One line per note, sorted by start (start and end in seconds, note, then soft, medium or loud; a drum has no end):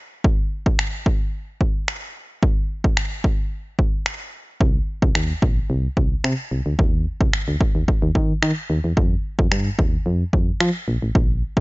0.24 kick loud
0.66 kick medium
0.79 finger snap loud
1.06 kick loud
1.61 kick medium
1.88 finger snap loud
2.43 kick loud
2.84 kick loud
2.97 finger snap loud
3.24 kick loud
3.79 kick medium
4.06 finger snap loud
4.61 4.78 C2 loud
4.61 kick loud
5.02 5.11 C2 loud
5.02 kick loud
5.15 5.33 D#2 medium
5.15 finger snap loud
5.42 5.60 A#1 medium
5.42 kick loud
5.70 5.88 C2 loud
5.97 6.15 C2 loud
5.97 kick medium
6.24 6.34 C3 loud
6.24 finger snap loud
6.51 6.61 C2 medium
6.66 6.74 D2 medium
6.79 7.06 D#2 loud
6.79 kick loud
7.21 7.29 C2 medium
7.21 kick medium
7.33 finger snap loud
7.48 7.56 D2 medium
7.61 kick loud
7.75 7.83 D#2 medium
7.88 kick loud
8.02 8.11 D#2 medium
8.15 8.33 D#3 loud
8.15 kick medium
8.42 8.52 D#3 loud
8.42 finger snap loud
8.70 8.79 D#2 loud
8.84 8.93 E2 medium
8.97 9.15 F2 loud
8.97 kick loud
9.39 9.47 F2 loud
9.39 kick loud
9.51 9.69 G2 loud
9.51 finger snap loud
9.79 9.97 D#2 loud
9.79 kick loud
10.06 10.24 F2 loud
10.33 10.51 F2 medium
10.33 kick medium
10.60 10.70 F3 loud
10.60 finger snap loud
10.88 10.97 A#1 loud
11.02 11.11 A1 medium
11.15 11.43 A#1 loud
11.15 kick loud
11.57 11.61 G1 medium
11.57 kick loud